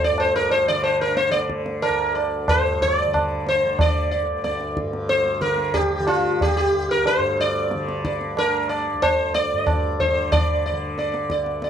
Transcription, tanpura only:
0.00 1.89 D2 medium
0.00 0.69 D3 medium
0.10 2.47 G2 medium
0.69 1.29 D3 medium
1.29 3.06 D3 medium
1.89 4.22 D2 medium
2.47 4.81 G2 medium
3.06 3.64 D3 medium
3.64 5.41 D3 medium
4.22 6.58 D2 medium
4.82 7.18 G2 medium
5.41 6.00 D3 medium
6.00 7.74 D3 medium
6.58 8.93 D2 medium
7.18 9.52 G2 medium
7.74 8.35 D3 medium
8.35 10.12 D3 medium
8.93 11.29 D2 medium
9.52 11.70 G2 medium
10.12 10.72 D3 medium
10.72 11.70 D3 medium
11.29 11.70 D2 medium

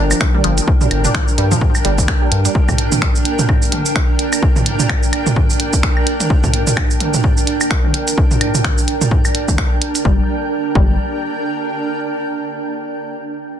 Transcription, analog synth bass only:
0.00 0.13 G1 loud
0.44 0.60 G1 medium
0.91 1.07 G1 loud
1.38 1.54 G2 loud
1.85 2.01 G1 loud
2.32 2.48 G2 medium
10.05 10.20 G1 medium
10.75 10.97 G1 loud

